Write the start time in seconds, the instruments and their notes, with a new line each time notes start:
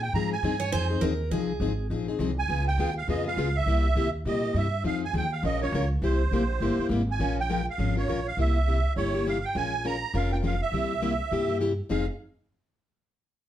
Already playing: upright bass A#2
0.02 accordion G5
0.13 upright bass G#2, steel-string acoustic guitar F3 C4 D#4 G#4, accordion A#5
0.33 accordion G#5
0.43 upright bass G2, steel-string acoustic guitar F3 C4 D#4 G#4
0.60 steel-string acoustic guitar C#5
0.72 upright bass F2, steel-string acoustic guitar F3 C4 D#4 G#4 C5
0.90 steel-string acoustic guitar C4 D#4 G#4
1.01 upright bass D#2, steel-string acoustic guitar F3 C4 D#4 G#4 A#4
1.31 upright bass C2, steel-string acoustic guitar F3 C4 D#4 G#4
1.60 upright bass G#1, steel-string acoustic guitar F3 C4 D#4 G#4
1.90 upright bass A#1, steel-string acoustic guitar F3 C4 D#4 G#4
2.08 steel-string acoustic guitar C4 D#4 G#4
2.19 upright bass C2, steel-string acoustic guitar F3 C4 D#4 G#4
2.39 accordion G#5
2.49 upright bass C#2, steel-string acoustic guitar C#3 G#3 B3 F4 G#4
2.68 accordion G5
2.78 upright bass D#2, steel-string acoustic guitar C#3 G#3 B3 F4 G#4
2.98 accordion F5
3.08 upright bass F2, steel-string acoustic guitar C#3 G#3 B3 F4 G#4, accordion D#5
3.26 steel-string acoustic guitar B3 F4 G#4, accordion F5
3.37 upright bass C#2, steel-string acoustic guitar C#3 G#3 B3 F4 G#4
3.56 accordion E5
3.66 upright bass C2, steel-string acoustic guitar C3 G3 A#3 E4 G4
3.95 upright bass D#2, steel-string acoustic guitar C3 G3 A#3 E4 G4
4.25 upright bass A#2, steel-string acoustic guitar C3 G3 A#3 E4 G4, accordion D#5
4.43 steel-string acoustic guitar A#3 E4 G4
4.54 upright bass G2, steel-string acoustic guitar C3 G3 A#3 E4 G4, accordion E5
4.84 upright bass F2, steel-string acoustic guitar F3 C4 D#4 G#4, accordion F5
5.05 accordion G#5
5.13 upright bass D#2, steel-string acoustic guitar F3 C4 D#4 G#4, accordion G5
5.32 accordion F5
5.43 upright bass A#1, steel-string acoustic guitar F3 G#3 C#4 F4 A#4, accordion D#5
5.61 steel-string acoustic guitar C#4 F4 A#4, accordion C#5
5.72 upright bass C#2, steel-string acoustic guitar F3 G#3 C#4 F4 A#4
6.02 upright bass C2, steel-string acoustic guitar C3 G3 A#3 E4 G4, accordion C5
6.31 upright bass A#1, steel-string acoustic guitar C3 G3 A#3 E4 G4
6.60 upright bass G1, steel-string acoustic guitar C3 G3 A#3 E4 G4
6.78 steel-string acoustic guitar A#3 E4 G4, muted upright bass stroke
6.89 upright bass G#1, steel-string acoustic guitar C3 G3 A#3 E4 G4
7.11 accordion G#5
7.19 upright bass A#1, steel-string acoustic guitar F3 G#3 C#4 F4 A#4
7.40 accordion G5
7.49 steel-string acoustic guitar F3 G#3 C#4 F4 A#4
7.70 accordion F5
7.78 upright bass G#1, steel-string acoustic guitar F3 G#3 C#4 F4 A#4
7.96 steel-string acoustic guitar C#4 F4 A#4, accordion C#5
8.07 upright bass A#1, steel-string acoustic guitar F3 G#3 C#4 F4 A#4
8.27 accordion F5
8.37 upright bass C2, steel-string acoustic guitar C3 G3 A#3 E4 G4, accordion E5
8.68 steel-string acoustic guitar C3 G3 A#3 E4 G4
8.96 upright bass G1, steel-string acoustic guitar C3 G3 A#3 E4 G4, accordion C#5
9.14 steel-string acoustic guitar A#3 E4 G4
9.26 steel-string acoustic guitar C3 G3 A#3 E4 G4, accordion F5
9.45 accordion G5
9.55 upright bass A#1, steel-string acoustic guitar F3 G#3 C#4 F4 A#4, accordion G#5
9.84 steel-string acoustic guitar F3 G#3 C#4 F4 A#4, accordion A#5
10.14 upright bass F1, steel-string acoustic guitar F3 G#3 C#4 F4 A#4, accordion F5
10.31 steel-string acoustic guitar C#4 F4 A#4, accordion G5
10.43 steel-string acoustic guitar F3 G#3 C#4 F4 A#4, accordion F5
10.62 accordion E5
10.72 upright bass C2, steel-string acoustic guitar C3 G3 A#3 E4 G4
11.02 steel-string acoustic guitar C3 G3 A#3 E4 G4
11.31 upright bass G2, steel-string acoustic guitar C3 G3 A#3 E4 G4
11.48 steel-string acoustic guitar A#3 E4 G4
11.60 steel-string acoustic guitar C3 G3 A#3 E4 G4
11.89 upright bass F1, steel-string acoustic guitar F3 C4 D#4 G#4, accordion F5